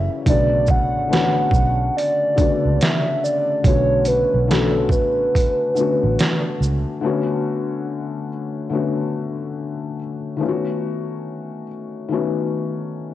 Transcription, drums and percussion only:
0.26 kick loud
0.26 closed hi-hat medium
0.67 kick medium
0.67 shaker soft
1.13 snare loud
1.13 closed hi-hat medium
1.51 kick loud
1.51 shaker soft
1.98 closed hi-hat medium
2.38 kick medium
2.38 closed hi-hat soft
2.38 shaker soft
2.81 snare loud
2.81 closed hi-hat medium
3.25 shaker soft
3.64 kick loud
3.64 closed hi-hat medium
4.05 closed hi-hat soft
4.05 shaker soft
4.51 snare loud
4.51 closed hi-hat medium
4.89 kick medium
4.89 shaker medium
5.35 kick medium
5.35 closed hi-hat medium
5.76 shaker soft
6.19 snare loud
6.19 closed hi-hat medium
6.63 shaker soft

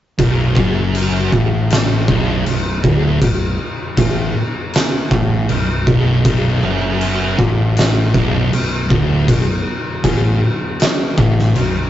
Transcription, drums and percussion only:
0.19 kick loud
0.19 crash medium
0.57 kick loud
0.95 crash medium
1.32 kick loud
1.70 snare loud
1.70 crash medium
2.08 kick loud
2.46 crash medium
2.84 kick loud
3.22 kick loud
3.22 crash medium
3.97 kick loud
3.97 crash medium
4.73 snare loud
4.73 crash medium
5.11 kick loud
5.49 crash medium
5.87 kick loud
6.25 kick loud
6.25 crash medium
7.01 crash medium
7.39 kick loud
7.77 snare loud
7.77 crash medium
8.14 kick loud
8.53 crash medium
8.90 kick loud
9.28 kick loud
9.28 crash medium
10.04 kick loud
10.04 crash medium
10.80 snare loud
10.80 crash medium
11.18 kick loud
11.39 snare soft
11.55 crash medium

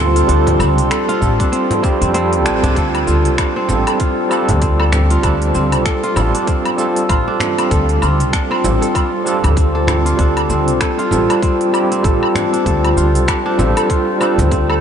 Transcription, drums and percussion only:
0.16 open hi-hat soft
0.16 shaker soft
0.29 open hi-hat medium
0.29 shaker soft
0.47 open hi-hat soft
0.47 frame drum medium
0.60 low woodblock medium
0.60 shaker medium
0.78 open hi-hat soft
0.78 shaker soft
0.91 finger snap medium
0.91 open hi-hat medium
0.91 low woodblock medium
0.91 shaker soft
1.09 open hi-hat soft
1.22 kick medium
1.22 shaker medium
1.40 kick loud
1.40 open hi-hat medium
1.40 shaker soft
1.53 open hi-hat medium
1.53 shaker soft
1.71 open hi-hat soft
1.71 frame drum medium
1.84 kick loud
1.84 shaker medium
2.02 open hi-hat soft
2.02 shaker soft
2.14 open hi-hat medium
2.14 shaker soft
2.33 open hi-hat soft
2.46 finger snap medium
2.46 shaker medium
2.64 open hi-hat soft
2.64 frame drum medium
2.64 shaker soft
2.76 kick loud
2.76 open hi-hat medium
2.76 shaker soft
2.95 open hi-hat soft
2.95 low woodblock medium
3.08 shaker medium
3.25 open hi-hat soft
3.25 shaker soft
3.38 finger snap medium
3.38 kick loud
3.38 open hi-hat medium
3.38 low woodblock medium
3.38 shaker soft
3.69 frame drum medium
3.69 shaker medium
3.87 open hi-hat soft
3.87 low woodblock medium
3.87 shaker soft
4.00 kick loud
4.00 open hi-hat medium
4.00 shaker soft
4.31 low woodblock medium
4.31 shaker medium
4.49 open hi-hat soft
4.49 frame drum medium
4.49 shaker soft
4.62 kick loud
4.62 open hi-hat medium
4.62 shaker soft
4.80 low woodblock medium
4.92 finger snap medium
4.92 frame drum medium
4.92 shaker medium
5.10 open hi-hat soft
5.10 shaker soft
5.23 kick loud
5.23 open hi-hat soft
5.23 low woodblock medium
5.23 shaker soft
5.42 open hi-hat soft
5.55 shaker medium
5.72 open hi-hat soft
5.72 low woodblock medium
5.72 shaker soft
5.86 finger snap medium
5.86 kick loud
5.86 open hi-hat medium
5.86 shaker soft
6.04 open hi-hat soft
6.16 frame drum medium
6.16 low woodblock medium
6.16 shaker medium
6.35 open hi-hat soft
6.35 shaker soft
6.47 kick loud
6.47 open hi-hat soft
6.47 shaker soft
6.66 open hi-hat soft
6.66 low woodblock medium
6.79 shaker medium
6.96 open hi-hat soft
6.96 shaker soft
7.09 kick loud
7.09 open hi-hat medium
7.09 low woodblock medium
7.09 shaker soft
7.40 finger snap medium
7.40 frame drum medium
7.40 shaker medium
7.58 open hi-hat soft
7.58 low woodblock medium
7.58 shaker soft
7.71 kick loud
7.71 open hi-hat soft
7.71 shaker soft
7.89 open hi-hat soft
8.02 low woodblock medium
8.02 shaker medium
8.20 open hi-hat soft
8.20 shaker soft
8.33 finger snap medium
8.33 kick loud
8.33 open hi-hat medium
8.33 shaker soft
8.52 low woodblock medium
8.64 frame drum medium
8.64 shaker medium
8.82 open hi-hat soft
8.82 shaker soft
8.95 kick loud
8.95 open hi-hat medium
8.95 low woodblock medium
8.95 shaker soft
9.27 shaker medium
9.44 open hi-hat soft
9.44 frame drum medium
9.44 low woodblock medium
9.44 shaker soft
9.57 kick loud
9.57 open hi-hat medium
9.57 shaker soft
9.87 finger snap medium
9.87 frame drum medium
9.87 low woodblock medium
9.87 shaker medium
10.06 open hi-hat soft
10.06 shaker soft
10.19 kick loud
10.19 open hi-hat soft
10.19 shaker soft
10.37 open hi-hat soft
10.37 low woodblock medium
10.50 shaker medium
10.68 open hi-hat soft
10.68 shaker soft
10.81 finger snap medium
10.81 kick loud
10.81 open hi-hat medium
10.81 low woodblock medium
10.81 shaker soft
10.99 open hi-hat soft
11.11 frame drum medium
11.11 shaker medium
11.30 open hi-hat soft
11.30 low woodblock medium
11.30 shaker soft
11.42 kick loud
11.42 open hi-hat soft
11.42 shaker soft
11.61 open hi-hat soft
11.74 low woodblock medium
11.74 shaker medium
11.92 open hi-hat soft
11.92 shaker soft
12.04 kick loud
12.04 open hi-hat soft
12.04 shaker soft
12.23 low woodblock medium
12.35 finger snap medium
12.35 frame drum medium
12.35 shaker medium
12.54 open hi-hat soft
12.54 shaker soft
12.66 kick loud
12.66 open hi-hat soft
12.66 shaker soft
12.85 open hi-hat soft
12.85 low woodblock medium
12.98 shaker medium
13.15 open hi-hat soft
13.15 shaker soft
13.28 finger snap medium
13.28 kick loud
13.28 open hi-hat medium
13.28 low woodblock medium
13.28 shaker soft
13.59 frame drum medium
13.59 shaker medium
13.77 open hi-hat soft
13.77 low woodblock medium
13.77 shaker soft
13.90 kick loud
13.90 open hi-hat soft
13.90 shaker soft
14.21 low woodblock medium
14.21 shaker medium
14.39 open hi-hat soft
14.39 frame drum loud
14.39 shaker soft
14.52 kick loud
14.52 open hi-hat soft
14.52 shaker soft
14.70 low woodblock medium

